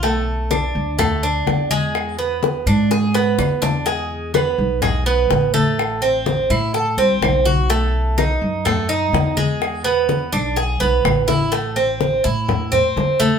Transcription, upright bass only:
X:1
M:4/4
L:1/8
Q:1/4=125
K:Ephr
V:1 name="Upright bass" clef=bass
B,,,3 D,,3 E,,2- | E,,3 ^G,,3 E,,2- | E,,3 B,,,3 A,,,2- | A,,,3 A,,2 C,, B,,,2- |
B,,,3 ^F,,3 E,,2- | E,,3 B,,,2 B,,, A,,,2- | [K:Am] A,,,3 A,,3 F,,2 |]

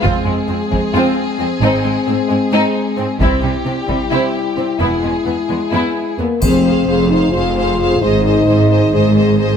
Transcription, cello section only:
X:1
M:7/8
L:1/8
Q:1/4=132
K:Abmix
V:1 name="Cello section" clef=bass
F,, F,, F,, F,, F,, z F,, | A,, A,, A,, A,, A,, z A,, | C, C, C, C, C, z C, | =E,, E,, E,, E,, E,, z E,, |
F,,2 F,,2 F,,3 | A,,2 A,,2 A,,3 |]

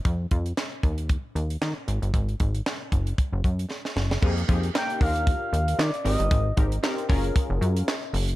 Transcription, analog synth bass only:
X:1
M:4/4
L:1/16
Q:"Swing 16ths" 1/4=115
K:Fdor
V:1 name="Analog synth bass" clef=bass
F,,2 F,,2 z2 E,,3 z E,,2 E, z A,,, G,,, | A,,,2 A,,,2 z2 _G,,,2 z G,,, _G,,2 z2 G,,,2 | F,,2 F,,2 z2 E,,3 z E,,2 E, z A,,, G,,, | A,,,2 A,,,2 z2 _G,,,2 z G,,, _G,,2 z2 G,,,2 |]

